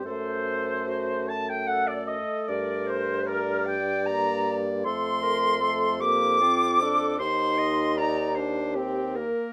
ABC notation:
X:1
M:3/4
L:1/16
Q:1/4=76
K:Gm
V:1 name="Flute"
c6 a g ^f d ^d2 | d2 c2 B2 g2 b3 z | c'6 d'6 | c'4 b2 z6 |]
V:2 name="Oboe"
c6 a g ^f d ^d2 | d2 c2 B2 g2 b3 z | c'6 d'6 | c'4 b2 z6 |]
V:3 name="Clarinet"
A4 ^F2 z2 A4 | B4 d8 | A2 B2 A2 G2 F2 A2 | c2 e2 d2 c2 G2 B2 |]
V:4 name="French horn"
A,12- | A,6 z2 B,4 | A,4 A,2 B,2 C2 D2 | E4 E2 D2 C2 B,2 |]
V:5 name="Bassoon" clef=bass
^F,,8- F,,2 z2 | G,,12 | F,,12 | E,,8- E,,2 z2 |]